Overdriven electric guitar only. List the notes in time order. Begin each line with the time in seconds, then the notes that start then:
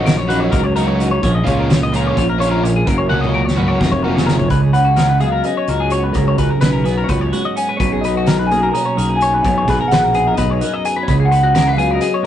Already playing: F#3 A#3 D#4 F#4
0.28 F#3 A#3 D#4 F#4
0.76 F#3 A#3 D#4 F#4
1.44 F3 A#3 C#4 F4
1.93 F3 A#3 C#4 F4
2.39 F3 A#3 C#4 F4
3.10 F#3 A#3 C#4 F#4
3.56 F#3 A#3 C#4 F#4
4.04 F#3 A#3 C#4 F#4